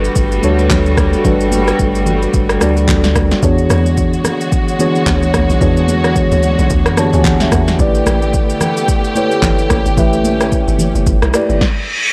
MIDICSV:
0, 0, Header, 1, 7, 480
1, 0, Start_track
1, 0, Tempo, 545455
1, 1099, Time_signature, 4, 2, 24, 8
1, 10673, End_track
2, 0, Start_track
2, 0, Title_t, "Tine electric piano"
2, 0, Program_c, 0, 4
2, 0, Control_c, 0, 64, 127
2, 0, Note_on_c, 0, 55, 90
2, 0, Note_on_c, 0, 62, 80
2, 0, Note_on_c, 0, 66, 82
2, 0, Note_on_c, 0, 69, 79
2, 0, Note_on_c, 0, 71, 97
2, 379, Note_off_c, 0, 55, 0
2, 379, Note_on_c, 0, 55, 85
2, 382, Note_off_c, 0, 62, 0
2, 382, Note_on_c, 0, 62, 78
2, 385, Note_off_c, 0, 66, 0
2, 385, Note_on_c, 0, 66, 79
2, 387, Note_off_c, 0, 69, 0
2, 387, Note_on_c, 0, 69, 78
2, 390, Note_on_c, 0, 73, 96
2, 970, Note_off_c, 0, 55, 0
2, 972, Note_off_c, 0, 62, 0
2, 973, Note_off_c, 0, 66, 0
2, 974, Note_off_c, 0, 69, 0
2, 976, Note_off_c, 0, 73, 0
2, 1098, Note_on_c, 0, 55, 87
2, 1102, Note_on_c, 0, 62, 78
2, 1104, Note_on_c, 0, 66, 79
2, 1106, Note_on_c, 0, 69, 75
2, 1110, Note_off_c, 0, 71, 0
2, 1110, Note_on_c, 0, 71, 94
2, 1874, Note_off_c, 0, 55, 0
2, 1876, Note_off_c, 0, 62, 0
2, 1877, Note_off_c, 0, 66, 0
2, 1878, Note_off_c, 0, 69, 0
2, 1880, Note_off_c, 0, 71, 0
2, 2301, Note_on_c, 0, 55, 86
2, 2303, Note_on_c, 0, 62, 76
2, 2307, Note_on_c, 0, 66, 79
2, 2309, Note_on_c, 0, 69, 78
2, 2312, Note_on_c, 0, 74, 96
2, 2891, Note_off_c, 0, 55, 0
2, 2892, Note_off_c, 0, 62, 0
2, 2894, Note_off_c, 0, 66, 0
2, 2895, Note_off_c, 0, 69, 0
2, 2897, Note_off_c, 0, 74, 0
2, 3018, Note_on_c, 0, 52, 84
2, 3021, Note_on_c, 0, 59, 77
2, 3023, Note_on_c, 0, 62, 75
2, 3024, Note_on_c, 0, 66, 78
2, 3027, Note_on_c, 0, 68, 77
2, 3029, Control_c, 0, 64, 0
2, 3030, Note_on_c, 0, 73, 89
2, 3191, Control_c, 0, 64, 127
2, 3794, Note_off_c, 0, 52, 0
2, 3795, Note_off_c, 0, 59, 0
2, 3797, Note_off_c, 0, 62, 0
2, 3797, Note_off_c, 0, 66, 0
2, 3799, Note_off_c, 0, 68, 0
2, 3800, Note_off_c, 0, 73, 0
2, 4219, Note_on_c, 0, 52, 81
2, 4222, Note_on_c, 0, 59, 79
2, 4224, Note_on_c, 0, 62, 76
2, 4227, Note_on_c, 0, 66, 79
2, 4229, Note_on_c, 0, 68, 77
2, 4230, Note_on_c, 0, 73, 94
2, 4810, Note_off_c, 0, 52, 0
2, 4812, Note_off_c, 0, 59, 0
2, 4813, Note_off_c, 0, 62, 0
2, 4814, Note_off_c, 0, 66, 0
2, 4815, Note_off_c, 0, 68, 0
2, 4816, Note_off_c, 0, 73, 0
2, 4939, Note_on_c, 0, 52, 85
2, 4941, Note_on_c, 0, 59, 80
2, 4944, Note_on_c, 0, 62, 80
2, 4946, Note_on_c, 0, 66, 77
2, 4949, Note_on_c, 0, 68, 76
2, 4950, Note_on_c, 0, 73, 94
2, 5715, Note_off_c, 0, 52, 0
2, 5716, Note_off_c, 0, 59, 0
2, 5717, Note_off_c, 0, 62, 0
2, 5718, Note_off_c, 0, 66, 0
2, 5719, Note_off_c, 0, 68, 0
2, 5720, Note_off_c, 0, 73, 0
2, 6139, Note_on_c, 0, 52, 89
2, 6142, Note_on_c, 0, 59, 78
2, 6143, Note_on_c, 0, 62, 76
2, 6144, Note_on_c, 0, 81, 73
2, 6146, Note_on_c, 0, 66, 75
2, 6148, Note_on_c, 0, 67, 62
2, 6150, Note_on_c, 0, 73, 93
2, 6205, Note_on_c, 0, 68, 78
2, 6210, Note_off_c, 0, 67, 0
2, 6271, Note_off_c, 0, 81, 0
2, 6284, Note_on_c, 0, 80, 71
2, 6375, Note_off_c, 0, 80, 0
2, 6384, Note_on_c, 0, 78, 69
2, 6511, Note_off_c, 0, 78, 0
2, 6524, Note_on_c, 0, 76, 71
2, 6730, Note_off_c, 0, 52, 0
2, 6732, Note_off_c, 0, 59, 0
2, 6732, Note_off_c, 0, 62, 0
2, 6734, Note_off_c, 0, 66, 0
2, 6736, Note_off_c, 0, 73, 0
2, 6763, Note_off_c, 0, 68, 0
2, 6838, Note_off_c, 0, 76, 0
2, 6859, Note_on_c, 0, 57, 85
2, 6862, Note_on_c, 0, 64, 76
2, 6865, Note_on_c, 0, 67, 78
2, 6868, Note_on_c, 0, 71, 76
2, 6869, Control_c, 0, 64, 0
2, 6870, Note_on_c, 0, 74, 97
2, 7004, Control_c, 0, 64, 127
2, 7635, Note_off_c, 0, 57, 0
2, 7636, Note_off_c, 0, 64, 0
2, 7637, Note_off_c, 0, 67, 0
2, 7639, Note_off_c, 0, 71, 0
2, 7640, Note_off_c, 0, 74, 0
2, 8059, Note_on_c, 0, 57, 86
2, 8063, Note_on_c, 0, 64, 83
2, 8065, Note_on_c, 0, 67, 77
2, 8068, Note_on_c, 0, 71, 79
2, 8071, Note_on_c, 0, 73, 96
2, 8650, Note_off_c, 0, 57, 0
2, 8652, Note_off_c, 0, 64, 0
2, 8653, Note_off_c, 0, 67, 0
2, 8655, Note_off_c, 0, 71, 0
2, 8656, Note_off_c, 0, 73, 0
2, 8778, Note_on_c, 0, 57, 80
2, 8781, Note_on_c, 0, 64, 81
2, 8785, Note_on_c, 0, 67, 77
2, 8787, Note_on_c, 0, 71, 80
2, 8789, Note_on_c, 0, 76, 91
2, 9554, Note_off_c, 0, 57, 0
2, 9556, Note_off_c, 0, 64, 0
2, 9557, Note_off_c, 0, 67, 0
2, 9559, Note_off_c, 0, 71, 0
2, 9560, Note_off_c, 0, 76, 0
2, 9979, Note_on_c, 0, 57, 82
2, 9982, Note_on_c, 0, 64, 79
2, 9985, Note_on_c, 0, 67, 81
2, 9988, Note_on_c, 0, 71, 76
2, 9990, Note_on_c, 0, 74, 98
2, 10219, Note_off_c, 0, 57, 0
2, 10220, Note_off_c, 0, 64, 0
2, 10222, Note_off_c, 0, 67, 0
2, 10223, Note_off_c, 0, 71, 0
2, 10224, Note_off_c, 0, 74, 0
2, 10228, Control_c, 0, 64, 0
2, 10673, End_track
3, 0, Start_track
3, 0, Title_t, "String section"
3, 0, Program_c, 1, 48
3, 0, Note_on_c, 1, 55, 86
3, 0, Note_on_c, 1, 57, 73
3, 0, Note_on_c, 1, 59, 73
3, 0, Note_on_c, 1, 66, 76
3, 2984, Note_off_c, 1, 66, 0
3, 2985, Note_off_c, 1, 55, 0
3, 2985, Note_off_c, 1, 57, 0
3, 2985, Note_off_c, 1, 59, 0
3, 3024, Note_on_c, 1, 50, 82
3, 3024, Note_on_c, 1, 56, 71
3, 3025, Note_on_c, 1, 66, 83
3, 3025, Note_on_c, 1, 73, 68
3, 6826, Note_off_c, 1, 56, 0
3, 6827, Note_off_c, 1, 66, 0
3, 6827, Note_off_c, 1, 73, 0
3, 6860, Note_on_c, 1, 57, 72
3, 6860, Note_on_c, 1, 59, 70
3, 6860, Note_on_c, 1, 67, 89
3, 8760, Note_off_c, 1, 59, 0
3, 8776, Note_on_c, 1, 61, 75
3, 10186, Note_off_c, 1, 50, 0
3, 10186, Note_off_c, 1, 57, 0
3, 10186, Note_off_c, 1, 67, 0
3, 10203, Note_off_c, 1, 61, 0
3, 10673, End_track
4, 0, Start_track
4, 0, Title_t, "Log drum bass"
4, 0, Program_c, 2, 39
4, 3016, Note_on_c, 2, 40, 109
4, 3232, Note_off_c, 2, 40, 0
4, 3259, Note_on_c, 2, 40, 104
4, 3688, Note_off_c, 2, 40, 0
4, 4457, Note_on_c, 2, 38, 89
4, 4672, Note_off_c, 2, 38, 0
4, 4699, Note_on_c, 2, 38, 89
4, 4823, Note_off_c, 2, 38, 0
4, 4836, Note_on_c, 2, 35, 89
4, 4927, Note_off_c, 2, 35, 0
4, 4938, Note_on_c, 2, 40, 105
4, 5527, Note_off_c, 2, 40, 0
4, 5559, Note_on_c, 2, 38, 85
4, 5773, Note_off_c, 2, 38, 0
4, 5798, Note_on_c, 2, 35, 94
4, 5888, Note_off_c, 2, 35, 0
4, 5899, Note_on_c, 2, 38, 102
4, 6040, Note_on_c, 2, 42, 89
4, 6053, Note_off_c, 2, 38, 0
4, 6254, Note_off_c, 2, 42, 0
4, 6278, Note_on_c, 2, 38, 91
4, 6583, Note_off_c, 2, 38, 0
4, 6618, Note_on_c, 2, 40, 84
4, 6833, Note_off_c, 2, 40, 0
4, 6856, Note_on_c, 2, 33, 107
4, 7072, Note_off_c, 2, 33, 0
4, 7097, Note_on_c, 2, 33, 108
4, 7527, Note_off_c, 2, 33, 0
4, 8294, Note_on_c, 2, 31, 96
4, 8511, Note_off_c, 2, 31, 0
4, 8537, Note_on_c, 2, 33, 89
4, 8662, Note_off_c, 2, 33, 0
4, 8676, Note_on_c, 2, 31, 92
4, 8777, Note_on_c, 2, 33, 109
4, 8790, Note_off_c, 2, 31, 0
4, 9366, Note_off_c, 2, 33, 0
4, 9397, Note_on_c, 2, 31, 97
4, 9612, Note_off_c, 2, 31, 0
4, 9637, Note_on_c, 2, 30, 93
4, 9727, Note_off_c, 2, 30, 0
4, 9738, Note_on_c, 2, 31, 103
4, 9863, Note_off_c, 2, 31, 0
4, 9877, Note_on_c, 2, 35, 90
4, 9967, Note_off_c, 2, 35, 0
4, 10115, Note_on_c, 2, 31, 82
4, 10207, Note_off_c, 2, 31, 0
4, 10673, End_track
5, 0, Start_track
5, 0, Title_t, "Sub bass"
5, 0, Program_c, 3, 38
5, 139, Note_on_c, 3, 31, 103
5, 348, Note_off_c, 3, 31, 0
5, 379, Note_on_c, 3, 38, 94
5, 1008, Note_off_c, 3, 38, 0
5, 1098, Note_on_c, 3, 31, 100
5, 1518, Note_off_c, 3, 31, 0
5, 1578, Note_on_c, 3, 31, 101
5, 1998, Note_off_c, 3, 31, 0
5, 2059, Note_on_c, 3, 31, 106
5, 2269, Note_off_c, 3, 31, 0
5, 2297, Note_on_c, 3, 38, 96
5, 2927, Note_off_c, 3, 38, 0
5, 10673, End_track
6, 0, Start_track
6, 0, Title_t, "Reverse cymbal"
6, 0, Program_c, 4, 119
6, 9738, Note_on_c, 4, 60, 85
6, 10673, Note_off_c, 4, 60, 0
6, 10673, End_track
7, 0, Start_track
7, 0, Title_t, "Drums"
7, 38, Note_on_c, 9, 82, 61
7, 126, Note_off_c, 9, 82, 0
7, 136, Note_on_c, 9, 82, 89
7, 139, Note_on_c, 9, 36, 112
7, 224, Note_off_c, 9, 82, 0
7, 227, Note_off_c, 9, 36, 0
7, 279, Note_on_c, 9, 82, 50
7, 367, Note_off_c, 9, 82, 0
7, 375, Note_on_c, 9, 63, 61
7, 379, Note_on_c, 9, 82, 99
7, 463, Note_off_c, 9, 63, 0
7, 467, Note_off_c, 9, 82, 0
7, 517, Note_on_c, 9, 82, 50
7, 605, Note_off_c, 9, 82, 0
7, 615, Note_on_c, 9, 36, 93
7, 617, Note_on_c, 9, 63, 80
7, 617, Note_on_c, 9, 64, 82
7, 618, Note_on_c, 9, 82, 73
7, 619, Note_on_c, 9, 39, 98
7, 703, Note_off_c, 9, 36, 0
7, 705, Note_off_c, 9, 63, 0
7, 705, Note_off_c, 9, 64, 0
7, 706, Note_off_c, 9, 82, 0
7, 707, Note_off_c, 9, 39, 0
7, 757, Note_on_c, 9, 82, 47
7, 845, Note_off_c, 9, 82, 0
7, 855, Note_on_c, 9, 63, 74
7, 857, Note_on_c, 9, 37, 99
7, 857, Note_on_c, 9, 82, 79
7, 858, Note_on_c, 9, 36, 93
7, 943, Note_off_c, 9, 63, 0
7, 945, Note_off_c, 9, 37, 0
7, 945, Note_off_c, 9, 82, 0
7, 946, Note_off_c, 9, 36, 0
7, 995, Note_on_c, 9, 82, 50
7, 1083, Note_off_c, 9, 82, 0
7, 1097, Note_on_c, 9, 36, 116
7, 1097, Note_on_c, 9, 82, 81
7, 1100, Note_on_c, 9, 64, 73
7, 1185, Note_off_c, 9, 36, 0
7, 1185, Note_off_c, 9, 82, 0
7, 1188, Note_off_c, 9, 64, 0
7, 1235, Note_on_c, 9, 82, 55
7, 1323, Note_off_c, 9, 82, 0
7, 1335, Note_on_c, 9, 63, 78
7, 1338, Note_on_c, 9, 82, 95
7, 1423, Note_off_c, 9, 63, 0
7, 1426, Note_off_c, 9, 82, 0
7, 1475, Note_on_c, 9, 82, 48
7, 1476, Note_on_c, 9, 37, 90
7, 1563, Note_off_c, 9, 82, 0
7, 1564, Note_off_c, 9, 37, 0
7, 1577, Note_on_c, 9, 82, 83
7, 1579, Note_on_c, 9, 36, 86
7, 1665, Note_off_c, 9, 82, 0
7, 1667, Note_off_c, 9, 36, 0
7, 1717, Note_on_c, 9, 82, 57
7, 1805, Note_off_c, 9, 82, 0
7, 1816, Note_on_c, 9, 82, 92
7, 1817, Note_on_c, 9, 63, 50
7, 1817, Note_on_c, 9, 64, 70
7, 1904, Note_off_c, 9, 82, 0
7, 1905, Note_off_c, 9, 63, 0
7, 1905, Note_off_c, 9, 64, 0
7, 1958, Note_on_c, 9, 82, 64
7, 2046, Note_off_c, 9, 82, 0
7, 2057, Note_on_c, 9, 82, 90
7, 2058, Note_on_c, 9, 36, 111
7, 2145, Note_off_c, 9, 82, 0
7, 2146, Note_off_c, 9, 36, 0
7, 2195, Note_on_c, 9, 37, 100
7, 2198, Note_on_c, 9, 82, 51
7, 2283, Note_off_c, 9, 37, 0
7, 2286, Note_off_c, 9, 82, 0
7, 2296, Note_on_c, 9, 63, 62
7, 2298, Note_on_c, 9, 37, 99
7, 2298, Note_on_c, 9, 82, 100
7, 2384, Note_off_c, 9, 63, 0
7, 2386, Note_off_c, 9, 37, 0
7, 2386, Note_off_c, 9, 82, 0
7, 2437, Note_on_c, 9, 82, 48
7, 2525, Note_off_c, 9, 82, 0
7, 2535, Note_on_c, 9, 36, 94
7, 2536, Note_on_c, 9, 63, 78
7, 2536, Note_on_c, 9, 64, 80
7, 2537, Note_on_c, 9, 82, 75
7, 2538, Note_on_c, 9, 39, 93
7, 2623, Note_off_c, 9, 36, 0
7, 2624, Note_off_c, 9, 63, 0
7, 2624, Note_off_c, 9, 64, 0
7, 2625, Note_off_c, 9, 82, 0
7, 2626, Note_off_c, 9, 39, 0
7, 2674, Note_on_c, 9, 38, 73
7, 2676, Note_on_c, 9, 82, 50
7, 2762, Note_off_c, 9, 38, 0
7, 2764, Note_off_c, 9, 82, 0
7, 2775, Note_on_c, 9, 63, 73
7, 2776, Note_on_c, 9, 37, 98
7, 2777, Note_on_c, 9, 82, 81
7, 2778, Note_on_c, 9, 36, 91
7, 2863, Note_off_c, 9, 63, 0
7, 2864, Note_off_c, 9, 37, 0
7, 2865, Note_off_c, 9, 82, 0
7, 2866, Note_off_c, 9, 36, 0
7, 2914, Note_on_c, 9, 82, 51
7, 2916, Note_on_c, 9, 38, 64
7, 3002, Note_off_c, 9, 82, 0
7, 3004, Note_off_c, 9, 38, 0
7, 3016, Note_on_c, 9, 82, 84
7, 3017, Note_on_c, 9, 36, 120
7, 3104, Note_off_c, 9, 82, 0
7, 3105, Note_off_c, 9, 36, 0
7, 3153, Note_on_c, 9, 82, 58
7, 3241, Note_off_c, 9, 82, 0
7, 3254, Note_on_c, 9, 63, 75
7, 3256, Note_on_c, 9, 82, 98
7, 3258, Note_on_c, 9, 37, 93
7, 3342, Note_off_c, 9, 63, 0
7, 3344, Note_off_c, 9, 82, 0
7, 3346, Note_off_c, 9, 37, 0
7, 3396, Note_on_c, 9, 82, 51
7, 3484, Note_off_c, 9, 82, 0
7, 3497, Note_on_c, 9, 82, 82
7, 3500, Note_on_c, 9, 36, 81
7, 3585, Note_off_c, 9, 82, 0
7, 3588, Note_off_c, 9, 36, 0
7, 3638, Note_on_c, 9, 82, 58
7, 3726, Note_off_c, 9, 82, 0
7, 3735, Note_on_c, 9, 63, 51
7, 3735, Note_on_c, 9, 64, 70
7, 3738, Note_on_c, 9, 37, 85
7, 3738, Note_on_c, 9, 82, 92
7, 3823, Note_off_c, 9, 63, 0
7, 3823, Note_off_c, 9, 64, 0
7, 3826, Note_off_c, 9, 37, 0
7, 3826, Note_off_c, 9, 82, 0
7, 3880, Note_on_c, 9, 82, 64
7, 3968, Note_off_c, 9, 82, 0
7, 3979, Note_on_c, 9, 36, 107
7, 3979, Note_on_c, 9, 82, 88
7, 4067, Note_off_c, 9, 36, 0
7, 4067, Note_off_c, 9, 82, 0
7, 4121, Note_on_c, 9, 82, 52
7, 4209, Note_off_c, 9, 82, 0
7, 4218, Note_on_c, 9, 63, 60
7, 4221, Note_on_c, 9, 82, 100
7, 4306, Note_off_c, 9, 63, 0
7, 4309, Note_off_c, 9, 82, 0
7, 4359, Note_on_c, 9, 82, 51
7, 4447, Note_off_c, 9, 82, 0
7, 4456, Note_on_c, 9, 36, 91
7, 4457, Note_on_c, 9, 63, 80
7, 4457, Note_on_c, 9, 64, 77
7, 4459, Note_on_c, 9, 82, 76
7, 4460, Note_on_c, 9, 39, 91
7, 4544, Note_off_c, 9, 36, 0
7, 4545, Note_off_c, 9, 63, 0
7, 4545, Note_off_c, 9, 64, 0
7, 4547, Note_off_c, 9, 82, 0
7, 4548, Note_off_c, 9, 39, 0
7, 4599, Note_on_c, 9, 82, 50
7, 4687, Note_off_c, 9, 82, 0
7, 4696, Note_on_c, 9, 63, 78
7, 4698, Note_on_c, 9, 36, 92
7, 4698, Note_on_c, 9, 37, 99
7, 4698, Note_on_c, 9, 82, 83
7, 4784, Note_off_c, 9, 63, 0
7, 4786, Note_off_c, 9, 36, 0
7, 4786, Note_off_c, 9, 37, 0
7, 4786, Note_off_c, 9, 82, 0
7, 4837, Note_on_c, 9, 82, 53
7, 4925, Note_off_c, 9, 82, 0
7, 4938, Note_on_c, 9, 36, 119
7, 4939, Note_on_c, 9, 82, 82
7, 5026, Note_off_c, 9, 36, 0
7, 5027, Note_off_c, 9, 82, 0
7, 5077, Note_on_c, 9, 82, 56
7, 5165, Note_off_c, 9, 82, 0
7, 5176, Note_on_c, 9, 63, 74
7, 5178, Note_on_c, 9, 82, 102
7, 5264, Note_off_c, 9, 63, 0
7, 5266, Note_off_c, 9, 82, 0
7, 5317, Note_on_c, 9, 82, 49
7, 5318, Note_on_c, 9, 37, 93
7, 5405, Note_off_c, 9, 82, 0
7, 5406, Note_off_c, 9, 37, 0
7, 5419, Note_on_c, 9, 82, 81
7, 5420, Note_on_c, 9, 36, 84
7, 5507, Note_off_c, 9, 82, 0
7, 5508, Note_off_c, 9, 36, 0
7, 5558, Note_on_c, 9, 82, 55
7, 5646, Note_off_c, 9, 82, 0
7, 5655, Note_on_c, 9, 63, 52
7, 5657, Note_on_c, 9, 82, 89
7, 5743, Note_off_c, 9, 63, 0
7, 5745, Note_off_c, 9, 82, 0
7, 5798, Note_on_c, 9, 82, 66
7, 5886, Note_off_c, 9, 82, 0
7, 5896, Note_on_c, 9, 82, 90
7, 5898, Note_on_c, 9, 36, 113
7, 5984, Note_off_c, 9, 82, 0
7, 5986, Note_off_c, 9, 36, 0
7, 6034, Note_on_c, 9, 37, 104
7, 6037, Note_on_c, 9, 82, 50
7, 6122, Note_off_c, 9, 37, 0
7, 6125, Note_off_c, 9, 82, 0
7, 6135, Note_on_c, 9, 63, 59
7, 6136, Note_on_c, 9, 37, 97
7, 6137, Note_on_c, 9, 82, 103
7, 6223, Note_off_c, 9, 63, 0
7, 6224, Note_off_c, 9, 37, 0
7, 6225, Note_off_c, 9, 82, 0
7, 6276, Note_on_c, 9, 82, 50
7, 6364, Note_off_c, 9, 82, 0
7, 6373, Note_on_c, 9, 63, 76
7, 6373, Note_on_c, 9, 64, 79
7, 6375, Note_on_c, 9, 36, 90
7, 6377, Note_on_c, 9, 82, 76
7, 6378, Note_on_c, 9, 39, 92
7, 6461, Note_off_c, 9, 63, 0
7, 6461, Note_off_c, 9, 64, 0
7, 6463, Note_off_c, 9, 36, 0
7, 6465, Note_off_c, 9, 82, 0
7, 6466, Note_off_c, 9, 39, 0
7, 6514, Note_on_c, 9, 38, 73
7, 6516, Note_on_c, 9, 82, 51
7, 6602, Note_off_c, 9, 38, 0
7, 6604, Note_off_c, 9, 82, 0
7, 6615, Note_on_c, 9, 63, 73
7, 6616, Note_on_c, 9, 37, 100
7, 6617, Note_on_c, 9, 82, 81
7, 6618, Note_on_c, 9, 36, 96
7, 6703, Note_off_c, 9, 63, 0
7, 6704, Note_off_c, 9, 37, 0
7, 6705, Note_off_c, 9, 82, 0
7, 6706, Note_off_c, 9, 36, 0
7, 6755, Note_on_c, 9, 82, 53
7, 6758, Note_on_c, 9, 38, 65
7, 6843, Note_off_c, 9, 82, 0
7, 6846, Note_off_c, 9, 38, 0
7, 6856, Note_on_c, 9, 82, 82
7, 6857, Note_on_c, 9, 36, 121
7, 6944, Note_off_c, 9, 82, 0
7, 6945, Note_off_c, 9, 36, 0
7, 6993, Note_on_c, 9, 82, 57
7, 7081, Note_off_c, 9, 82, 0
7, 7094, Note_on_c, 9, 63, 78
7, 7096, Note_on_c, 9, 82, 98
7, 7098, Note_on_c, 9, 37, 96
7, 7182, Note_off_c, 9, 63, 0
7, 7184, Note_off_c, 9, 82, 0
7, 7186, Note_off_c, 9, 37, 0
7, 7235, Note_on_c, 9, 82, 50
7, 7323, Note_off_c, 9, 82, 0
7, 7336, Note_on_c, 9, 82, 85
7, 7339, Note_on_c, 9, 36, 79
7, 7424, Note_off_c, 9, 82, 0
7, 7427, Note_off_c, 9, 36, 0
7, 7477, Note_on_c, 9, 82, 58
7, 7565, Note_off_c, 9, 82, 0
7, 7575, Note_on_c, 9, 63, 50
7, 7575, Note_on_c, 9, 64, 74
7, 7576, Note_on_c, 9, 37, 85
7, 7576, Note_on_c, 9, 82, 90
7, 7663, Note_off_c, 9, 63, 0
7, 7663, Note_off_c, 9, 64, 0
7, 7664, Note_off_c, 9, 37, 0
7, 7664, Note_off_c, 9, 82, 0
7, 7718, Note_on_c, 9, 82, 64
7, 7806, Note_off_c, 9, 82, 0
7, 7818, Note_on_c, 9, 82, 91
7, 7819, Note_on_c, 9, 36, 116
7, 7906, Note_off_c, 9, 82, 0
7, 7907, Note_off_c, 9, 36, 0
7, 7959, Note_on_c, 9, 82, 51
7, 8047, Note_off_c, 9, 82, 0
7, 8056, Note_on_c, 9, 63, 59
7, 8058, Note_on_c, 9, 82, 106
7, 8144, Note_off_c, 9, 63, 0
7, 8146, Note_off_c, 9, 82, 0
7, 8196, Note_on_c, 9, 82, 53
7, 8284, Note_off_c, 9, 82, 0
7, 8294, Note_on_c, 9, 63, 81
7, 8294, Note_on_c, 9, 64, 76
7, 8295, Note_on_c, 9, 36, 93
7, 8296, Note_on_c, 9, 82, 76
7, 8297, Note_on_c, 9, 39, 92
7, 8382, Note_off_c, 9, 63, 0
7, 8382, Note_off_c, 9, 64, 0
7, 8383, Note_off_c, 9, 36, 0
7, 8384, Note_off_c, 9, 82, 0
7, 8385, Note_off_c, 9, 39, 0
7, 8435, Note_on_c, 9, 82, 50
7, 8523, Note_off_c, 9, 82, 0
7, 8535, Note_on_c, 9, 63, 77
7, 8536, Note_on_c, 9, 37, 101
7, 8537, Note_on_c, 9, 36, 89
7, 8537, Note_on_c, 9, 82, 84
7, 8623, Note_off_c, 9, 63, 0
7, 8624, Note_off_c, 9, 37, 0
7, 8625, Note_off_c, 9, 36, 0
7, 8625, Note_off_c, 9, 82, 0
7, 8675, Note_on_c, 9, 82, 53
7, 8763, Note_off_c, 9, 82, 0
7, 8777, Note_on_c, 9, 36, 117
7, 8777, Note_on_c, 9, 64, 73
7, 8777, Note_on_c, 9, 82, 84
7, 8865, Note_off_c, 9, 36, 0
7, 8865, Note_off_c, 9, 64, 0
7, 8865, Note_off_c, 9, 82, 0
7, 8915, Note_on_c, 9, 82, 57
7, 9003, Note_off_c, 9, 82, 0
7, 9015, Note_on_c, 9, 63, 77
7, 9018, Note_on_c, 9, 82, 95
7, 9103, Note_off_c, 9, 63, 0
7, 9106, Note_off_c, 9, 82, 0
7, 9157, Note_on_c, 9, 82, 50
7, 9158, Note_on_c, 9, 37, 92
7, 9245, Note_off_c, 9, 82, 0
7, 9246, Note_off_c, 9, 37, 0
7, 9258, Note_on_c, 9, 82, 86
7, 9259, Note_on_c, 9, 36, 81
7, 9346, Note_off_c, 9, 82, 0
7, 9347, Note_off_c, 9, 36, 0
7, 9399, Note_on_c, 9, 82, 60
7, 9487, Note_off_c, 9, 82, 0
7, 9494, Note_on_c, 9, 63, 50
7, 9494, Note_on_c, 9, 64, 74
7, 9498, Note_on_c, 9, 82, 90
7, 9582, Note_off_c, 9, 63, 0
7, 9582, Note_off_c, 9, 64, 0
7, 9586, Note_off_c, 9, 82, 0
7, 9640, Note_on_c, 9, 82, 64
7, 9728, Note_off_c, 9, 82, 0
7, 9738, Note_on_c, 9, 36, 114
7, 9738, Note_on_c, 9, 82, 88
7, 9826, Note_off_c, 9, 36, 0
7, 9826, Note_off_c, 9, 82, 0
7, 9877, Note_on_c, 9, 37, 101
7, 9880, Note_on_c, 9, 82, 52
7, 9965, Note_off_c, 9, 37, 0
7, 9968, Note_off_c, 9, 82, 0
7, 9976, Note_on_c, 9, 63, 60
7, 9977, Note_on_c, 9, 37, 100
7, 9977, Note_on_c, 9, 82, 102
7, 10064, Note_off_c, 9, 63, 0
7, 10065, Note_off_c, 9, 37, 0
7, 10065, Note_off_c, 9, 82, 0
7, 10117, Note_on_c, 9, 82, 50
7, 10205, Note_off_c, 9, 82, 0
7, 10217, Note_on_c, 9, 36, 104
7, 10218, Note_on_c, 9, 38, 89
7, 10305, Note_off_c, 9, 36, 0
7, 10306, Note_off_c, 9, 38, 0
7, 10673, End_track
0, 0, End_of_file